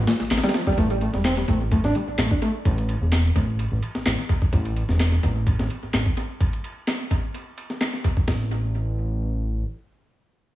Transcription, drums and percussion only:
0.07 snare, ride, shaker
0.20 snare, shaker
0.31 snare, clap, ride, shaker
0.37 snare, ride
0.43 snare, ride, shaker
0.49 snare, ride
0.54 snare, ride, shaker
0.67 kick, shaker
0.78 kick, ride
0.90 ride
1.01 ride
1.14 snare
1.25 snare, clap, ride
1.37 snare
1.48 kick, ride
1.72 kick, ride
1.84 snare
1.95 ride
2.18 snare, clap, ride
2.31 kick
2.42 ride
2.65 kick, ride
2.78 ride
2.89 ride
3.12 snare, clap, ride
3.36 kick, ride
3.59 ride
3.83 ride
3.95 snare
4.06 snare, clap, ride
4.18 snare
4.29 kick, ride
4.42 kick
4.53 kick, ride
4.65 ride
4.76 ride
4.89 snare
5.00 snare, clap, ride
5.12 snare
5.23 kick, ride
5.47 kick, ride
5.59 snare
5.70 ride
5.94 snare, clap, ride
6.06 kick
6.17 ride
6.41 kick, ride
6.53 ride
6.64 ride
6.87 snare, clap, ride
7.11 kick, ride
7.34 ride
7.58 ride
7.70 snare
7.81 snare, clap, ride
7.93 snare
8.04 kick, ride
8.17 kick
8.28 kick, snare, open hi-hat

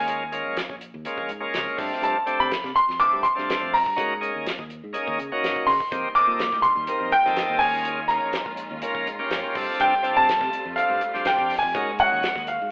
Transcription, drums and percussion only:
0.08 closed hi-hat
0.33 closed hi-hat
0.57 snare, closed hi-hat
0.70 kick
0.81 closed hi-hat
1.05 closed hi-hat
1.18 kick
1.29 closed hi-hat
1.54 snare, closed hi-hat
1.79 kick, snare, open hi-hat
1.92 snare
2.03 closed hi-hat
2.27 closed hi-hat
2.51 snare, closed hi-hat
2.64 kick, snare
2.76 closed hi-hat
2.90 snare
3.00 closed hi-hat
3.25 closed hi-hat
3.38 snare
3.50 snare, closed hi-hat
3.62 kick
3.74 open hi-hat
3.86 kick
3.98 kick, closed hi-hat
4.23 closed hi-hat
4.47 snare, closed hi-hat
4.59 kick
4.70 closed hi-hat
4.94 closed hi-hat
5.08 kick
5.19 closed hi-hat
5.44 snare, closed hi-hat
5.56 kick
5.69 open hi-hat
5.80 kick
5.92 kick, closed hi-hat
6.16 closed hi-hat
6.40 snare, closed hi-hat
6.52 kick, snare
6.63 closed hi-hat
6.87 closed hi-hat
7.12 closed hi-hat
7.26 snare
7.36 snare, closed hi-hat
7.61 kick, open hi-hat
7.85 closed hi-hat
8.09 snare, closed hi-hat
8.33 snare, closed hi-hat
8.46 kick
8.57 closed hi-hat
8.82 closed hi-hat
8.95 kick
9.07 closed hi-hat
9.31 snare, closed hi-hat
9.55 kick, snare, open hi-hat
9.80 closed hi-hat
10.04 closed hi-hat
10.29 snare, closed hi-hat
10.41 kick, snare
10.53 closed hi-hat
10.78 closed hi-hat
11.01 closed hi-hat
11.14 snare
11.25 snare, closed hi-hat
11.38 kick
11.50 open hi-hat
11.63 kick
11.75 kick, closed hi-hat
11.99 closed hi-hat
12.23 snare, closed hi-hat
12.36 kick, snare
12.47 closed hi-hat

